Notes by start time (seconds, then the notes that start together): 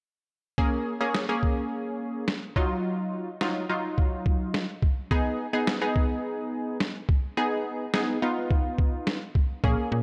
0.58 A#3 C#4 G#4, kick
1.01 A#3 C#4 G#4
1.15 snare
1.29 A#3 C#4 G#4
1.43 kick
2.28 snare
2.56 F#3 D#4 F4, kick
3.41 F#3 D#4 F4, snare
3.69 F#3 D#4 F4
3.98 kick
4.26 kick
4.54 snare
4.82 kick
5.11 B3 D#4 G#4, kick
5.53 B3 D#4 G#4
5.67 snare
5.82 B3 D#4 G#4
5.96 kick
6.80 snare
7.09 kick
7.37 B3 D#4 G#4
7.94 B3 D#4 G#4, snare
8.22 B3 D#4 F4
8.51 kick
8.78 kick
9.07 snare
9.35 kick
9.64 A#1 A#3 C#4 G#4, kick
9.92 A#2